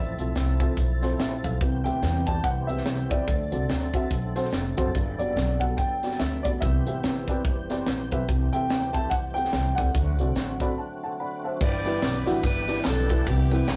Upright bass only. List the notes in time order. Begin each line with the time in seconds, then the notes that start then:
Already playing: A1
0.18 B1
0.36 C2
0.77 B1
1.19 A#1
1.44 B1
1.61 C2
1.85 D2
2.03 E2
2.44 C2
2.86 C2
3.11 C#2
3.28 D2
3.52 C2
3.70 D2
4.11 B1
4.52 F1
4.78 F#1
4.95 G1
5.19 F#1
5.36 B1
5.78 G1
6.20 D2
6.62 C2
6.86 A1
7.04 G1
7.45 F#1
7.87 A#1
8.12 B1
8.29 C2
8.53 E2
8.70 D2
9.11 C2
9.53 C2
9.78 C#2
9.94 D2
10.19 C2
10.35 A1
11.61 G1
12.03 B1
12.27 A1
12.43 G1
12.86 B1
13.27 C2
13.68 B1